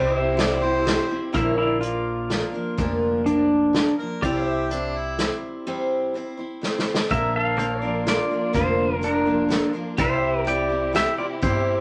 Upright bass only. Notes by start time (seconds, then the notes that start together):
Already playing: C2
1.35 A#1
2.78 F1
4.23 C2
7.11 A#1
8.54 F1
9.99 C2
11.43 G1